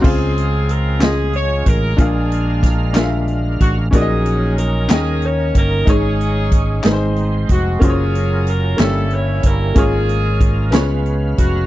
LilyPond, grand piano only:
\new Staff \with { instrumentName = "Grand piano" } { \time 6/8 \key des \major \tempo 4. = 62 << { <d'' bes''>16 r2 r8. | r2. | r2. | r2. |
r2. | r2. | } \\ { <des c' f' aes' c'' f''>4. <des' f' aes' ees'' c'''>4. | <bes, d' f' aes' bes' f''>4. <d' f' aes' bes' fes'' f''>4. | <bes, des' ees' ges' bes' d'' ees''>4. <ees des' ees' bes' ees'' g''>4. | <aes, ees' aes' des''>4. <aes, ees' aes' ces'' c''>4. |
<ges bes des' f' c'' des''>4. <g, bes des' e' g' des''>4. | <aes, bes des' f' aes' des''>4. <des ces' des' f' aes' des''>4. | } >> }